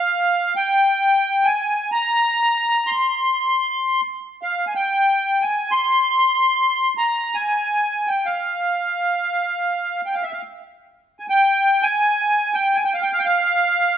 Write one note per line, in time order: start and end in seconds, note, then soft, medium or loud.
0.00 0.54 F5 medium
0.56 1.47 G5 medium
1.44 1.90 G#5 medium
1.92 2.91 A#5 medium
2.87 4.01 C6 medium
4.43 4.65 F5 medium
4.67 4.74 G#5 medium
4.75 5.44 G5 medium
5.42 5.71 G#5 medium
5.71 6.93 C6 loud
6.98 7.35 A#5 medium
7.35 8.10 G#5 medium
8.07 8.27 G5 medium
8.26 10.01 F5 medium
10.06 10.15 G5 medium
10.14 10.23 F5 medium
10.23 10.32 E5 medium
10.33 10.42 F5 medium
11.20 11.26 G#5 medium
11.30 11.85 G5 medium
11.82 12.55 G#5 medium
12.54 12.76 G5 medium
12.74 12.84 G#5 medium
12.85 12.93 G5 medium
12.94 13.02 F5 medium
13.02 13.11 G5 medium
13.13 13.19 F5 medium
13.19 13.25 G5 medium
13.25 13.98 F5 medium